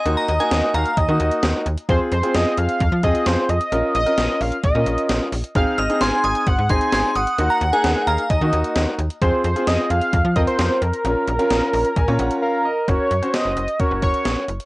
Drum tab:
HH |x-xxx-xxx-xxx-xx|x-xxx-xxx-xxx-xx|x-xxx-oxx-xxx-ox|x-xxx-xxx-xxx-xx|
SD |----o-------o---|----o-------o---|----o-------o---|----o-------o---|
BD |--------o-------|o-------o-o-----|--------o-------|o-------o-o-----|

HH |x-xxx-xxx-xxx-xx|x-xxx-xxx-xxx-xx|x-xxx-oxx-xx----|x-xxx-xxx-xxx-xx|
SD |----o-------o---|----o-------o---|----o-----------|----o-------o---|
BD |--------o-------|o-------o-o-----|--------o-------|o-------o-o-----|